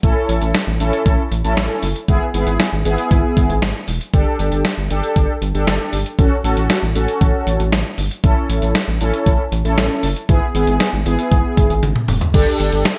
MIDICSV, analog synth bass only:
0, 0, Header, 1, 2, 480
1, 0, Start_track
1, 0, Tempo, 512821
1, 31, Time_signature, 4, 2, 24, 8
1, 12155, End_track
2, 0, Start_track
2, 0, Title_t, "Analog synth bass"
2, 0, Program_c, 0, 38
2, 31, Note_on_c, 0, 33, 103
2, 134, Note_off_c, 0, 33, 0
2, 271, Note_on_c, 0, 33, 99
2, 374, Note_off_c, 0, 33, 0
2, 391, Note_on_c, 0, 33, 94
2, 494, Note_off_c, 0, 33, 0
2, 631, Note_on_c, 0, 33, 101
2, 734, Note_off_c, 0, 33, 0
2, 750, Note_on_c, 0, 33, 99
2, 854, Note_off_c, 0, 33, 0
2, 991, Note_on_c, 0, 33, 102
2, 1094, Note_off_c, 0, 33, 0
2, 1231, Note_on_c, 0, 33, 100
2, 1334, Note_off_c, 0, 33, 0
2, 1351, Note_on_c, 0, 33, 102
2, 1454, Note_off_c, 0, 33, 0
2, 1472, Note_on_c, 0, 33, 106
2, 1574, Note_off_c, 0, 33, 0
2, 1712, Note_on_c, 0, 30, 87
2, 1814, Note_off_c, 0, 30, 0
2, 1951, Note_on_c, 0, 32, 103
2, 2054, Note_off_c, 0, 32, 0
2, 2192, Note_on_c, 0, 32, 99
2, 2295, Note_off_c, 0, 32, 0
2, 2311, Note_on_c, 0, 32, 105
2, 2414, Note_off_c, 0, 32, 0
2, 2552, Note_on_c, 0, 32, 98
2, 2655, Note_off_c, 0, 32, 0
2, 2672, Note_on_c, 0, 32, 108
2, 2774, Note_off_c, 0, 32, 0
2, 2911, Note_on_c, 0, 32, 105
2, 3014, Note_off_c, 0, 32, 0
2, 3153, Note_on_c, 0, 32, 97
2, 3255, Note_off_c, 0, 32, 0
2, 3272, Note_on_c, 0, 32, 101
2, 3375, Note_off_c, 0, 32, 0
2, 3391, Note_on_c, 0, 32, 102
2, 3494, Note_off_c, 0, 32, 0
2, 3631, Note_on_c, 0, 28, 91
2, 3734, Note_off_c, 0, 28, 0
2, 3872, Note_on_c, 0, 31, 108
2, 3974, Note_off_c, 0, 31, 0
2, 4112, Note_on_c, 0, 31, 98
2, 4215, Note_off_c, 0, 31, 0
2, 4231, Note_on_c, 0, 31, 96
2, 4334, Note_off_c, 0, 31, 0
2, 4471, Note_on_c, 0, 31, 96
2, 4574, Note_off_c, 0, 31, 0
2, 4591, Note_on_c, 0, 31, 102
2, 4694, Note_off_c, 0, 31, 0
2, 4831, Note_on_c, 0, 31, 105
2, 4934, Note_off_c, 0, 31, 0
2, 5070, Note_on_c, 0, 31, 100
2, 5174, Note_off_c, 0, 31, 0
2, 5190, Note_on_c, 0, 31, 101
2, 5294, Note_off_c, 0, 31, 0
2, 5311, Note_on_c, 0, 31, 112
2, 5414, Note_off_c, 0, 31, 0
2, 5551, Note_on_c, 0, 31, 86
2, 5654, Note_off_c, 0, 31, 0
2, 5791, Note_on_c, 0, 33, 116
2, 5894, Note_off_c, 0, 33, 0
2, 6029, Note_on_c, 0, 33, 100
2, 6133, Note_off_c, 0, 33, 0
2, 6149, Note_on_c, 0, 33, 102
2, 6253, Note_off_c, 0, 33, 0
2, 6390, Note_on_c, 0, 33, 91
2, 6493, Note_off_c, 0, 33, 0
2, 6509, Note_on_c, 0, 33, 106
2, 6613, Note_off_c, 0, 33, 0
2, 6751, Note_on_c, 0, 33, 97
2, 6854, Note_off_c, 0, 33, 0
2, 6990, Note_on_c, 0, 33, 101
2, 7094, Note_off_c, 0, 33, 0
2, 7110, Note_on_c, 0, 33, 103
2, 7214, Note_off_c, 0, 33, 0
2, 7230, Note_on_c, 0, 33, 101
2, 7333, Note_off_c, 0, 33, 0
2, 7470, Note_on_c, 0, 31, 97
2, 7574, Note_off_c, 0, 31, 0
2, 7711, Note_on_c, 0, 33, 103
2, 7814, Note_off_c, 0, 33, 0
2, 7950, Note_on_c, 0, 33, 101
2, 8054, Note_off_c, 0, 33, 0
2, 8071, Note_on_c, 0, 33, 100
2, 8174, Note_off_c, 0, 33, 0
2, 8311, Note_on_c, 0, 33, 106
2, 8414, Note_off_c, 0, 33, 0
2, 8431, Note_on_c, 0, 33, 103
2, 8534, Note_off_c, 0, 33, 0
2, 8671, Note_on_c, 0, 33, 108
2, 8774, Note_off_c, 0, 33, 0
2, 8911, Note_on_c, 0, 33, 100
2, 9014, Note_off_c, 0, 33, 0
2, 9030, Note_on_c, 0, 33, 101
2, 9134, Note_off_c, 0, 33, 0
2, 9151, Note_on_c, 0, 33, 111
2, 9254, Note_off_c, 0, 33, 0
2, 9391, Note_on_c, 0, 30, 88
2, 9494, Note_off_c, 0, 30, 0
2, 9632, Note_on_c, 0, 32, 103
2, 9735, Note_off_c, 0, 32, 0
2, 9871, Note_on_c, 0, 32, 99
2, 9974, Note_off_c, 0, 32, 0
2, 9992, Note_on_c, 0, 32, 110
2, 10095, Note_off_c, 0, 32, 0
2, 10232, Note_on_c, 0, 32, 97
2, 10335, Note_off_c, 0, 32, 0
2, 10352, Note_on_c, 0, 32, 106
2, 10454, Note_off_c, 0, 32, 0
2, 10592, Note_on_c, 0, 32, 106
2, 10694, Note_off_c, 0, 32, 0
2, 10833, Note_on_c, 0, 32, 97
2, 10935, Note_off_c, 0, 32, 0
2, 10952, Note_on_c, 0, 32, 101
2, 11054, Note_off_c, 0, 32, 0
2, 11071, Note_on_c, 0, 32, 100
2, 11174, Note_off_c, 0, 32, 0
2, 11311, Note_on_c, 0, 28, 92
2, 11414, Note_off_c, 0, 28, 0
2, 11551, Note_on_c, 0, 31, 111
2, 11654, Note_off_c, 0, 31, 0
2, 11792, Note_on_c, 0, 31, 95
2, 11895, Note_off_c, 0, 31, 0
2, 11912, Note_on_c, 0, 31, 99
2, 12015, Note_off_c, 0, 31, 0
2, 12155, End_track
0, 0, End_of_file